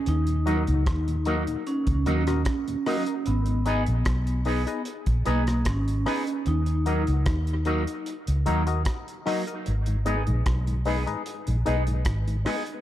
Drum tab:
HH |xxxxxxxxxxxxxxox|xxxxxxoxxxxxxxox|xxxxxxxxxxxxxxox|xxxxxxoxxxxxxxox|
SD |----r------rr-r-|----r------rr-r-|----r-------r-r-|----r-------r-r-|
BD |----o----o--o---|----o----o--o---|----o-------o---|----o-------o---|